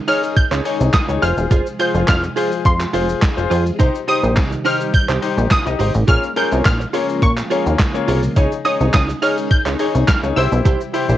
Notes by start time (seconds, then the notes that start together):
Already playing: C#3 D#3 G#3 D#4 G#4
0.08 D#4 G#4 C#5 F6, open hi-hat, shaker
0.23 muted clean electric guitar stroke, shaker
0.36 G6, muted clean electric guitar stroke, kick, closed hi-hat, shaker
0.51 C#2 D#4 G#4 C#5, clap, shaker
0.65 D#4 G#4 C#5, open hi-hat, shaker
0.80 C2, muted clean electric guitar stroke, shaker
0.93 D#6, muted clean electric guitar stroke, kick, snare, clap, closed hi-hat, shaker
1.09 C#2 D#4 G#4 C#5, muted clean electric guitar stroke, shaker
1.22 F1 C3 F3 G#3 F4 G#4 C5 F6, open hi-hat, shaker
1.37 E1, muted clean electric guitar stroke, shaker
1.51 F1 F4 G#4 C5, kick, closed hi-hat, shaker
1.66 shaker
1.79 F4 G#4 C5 G6, open hi-hat, shaker
1.94 F1 F4 G#4 C5, shaker
2.08 F2 F6, kick, snare, clap, closed hi-hat, shaker
2.23 muted clean electric guitar stroke, shaker
2.36 F4 G#4 C5, open hi-hat, shaker
2.52 muted clean electric guitar stroke, shaker
2.65 F2 C6, kick, closed hi-hat, shaker
2.80 muted clean electric guitar stroke, clap, shaker
2.93 F1 F4 G#4 C5, open hi-hat, shaker
3.09 muted clean electric guitar stroke, shaker
3.22 F1, muted clean electric guitar stroke, kick, snare, clap, closed hi-hat, shaker
3.37 F1 F4 G#4 C5, muted clean electric guitar stroke, shaker
3.50 F2 F4 G#4 C5, open hi-hat, shaker
3.66 muted clean electric guitar stroke, shaker
3.79 C2 D#3 G3 D#4 G4 C5, kick, closed hi-hat, shaker
3.95 shaker
4.08 D#4 G4 C5 D#6, open hi-hat, shaker
4.23 A#1 D#4 G4 C5, shaker
4.37 C2, muted clean electric guitar stroke, kick, snare, clap, closed hi-hat, shaker
4.52 muted clean electric guitar stroke, shaker
4.65 D#4 G4 C5 F6, open hi-hat, shaker
4.80 muted clean electric guitar stroke, shaker
4.94 G6, muted clean electric guitar stroke, kick, closed hi-hat, shaker
5.09 C2 D#4 G4 C5, clap, shaker
5.22 D#4 G4 C5, muted clean electric guitar stroke, open hi-hat, shaker
5.37 A#1, muted clean electric guitar stroke, shaker
5.51 D#6, muted clean electric guitar stroke, kick, snare, clap, closed hi-hat, shaker
5.66 C2 D#4 G4 D#5, muted clean electric guitar stroke, shaker
5.79 G#1 D#4 G4 C5, open hi-hat, shaker
5.94 A1, muted clean electric guitar stroke, shaker
6.07 A#1 C#3 F3 G#3 A#3 C#4 F4 G#4 C#5 F6, kick, closed hi-hat, shaker
6.23 shaker
6.36 A#3 C#4 F4 G#4 A#4 C#5 G6, open hi-hat, shaker
6.51 C2 F4 G#4 C#5, shaker
6.65 A#1 F6, kick, snare, clap, closed hi-hat, shaker
6.80 muted clean electric guitar stroke, shaker
6.93 A#3 C#4 F4 G#4 C#5, open hi-hat, shaker
7.09 shaker
7.22 A#2 C#6, kick, closed hi-hat, shaker
7.37 muted clean electric guitar stroke, clap, shaker
7.50 A#3 C#4 F4 G#4 C#5, open hi-hat, shaker
7.66 D#2, muted clean electric guitar stroke, shaker
7.79 muted clean electric guitar stroke, kick, snare, clap, closed hi-hat, shaker
7.94 A#3 C#4 F4 G#4 C#5, muted clean electric guitar stroke, shaker
8.08 C2 F4 G#4 C#5, open hi-hat, shaker
8.23 muted clean electric guitar stroke, shaker
8.36 C#2 C#3 D#3 G#3 D#4 G#4 C#5, kick, closed hi-hat, shaker
8.52 shaker
8.65 D#4 G#4 C#5 D#6, open hi-hat, shaker
8.80 C2 D#4 G#4 C#5, shaker
8.94 C#2 D#6, muted clean electric guitar stroke, kick, snare, clap, closed hi-hat, shaker
9.09 muted clean electric guitar stroke, shaker
9.22 D#4 G#4 C#5 F6, open hi-hat, shaker
9.37 muted clean electric guitar stroke, shaker
9.51 G6, muted clean electric guitar stroke, kick, closed hi-hat, shaker
9.66 C#2 D#4 G#4 C#5, clap, shaker
9.79 D#4 G#4 C#5, open hi-hat, shaker
9.95 C2, shaker
10.08 F6, muted clean electric guitar stroke, kick, snare, clap, closed hi-hat, shaker
10.23 C#2 D#4 G#4 C#5, muted clean electric guitar stroke, shaker
10.36 C2 C3 E3 G3 E4 G4 C5 E6, open hi-hat, shaker
10.52 B1, muted clean electric guitar stroke, shaker
10.65 C2 E4 G4 C5, kick, closed hi-hat, shaker
10.81 shaker
10.93 E4 G4 C5, open hi-hat, shaker
11.09 A#1 E4 G4 C5, shaker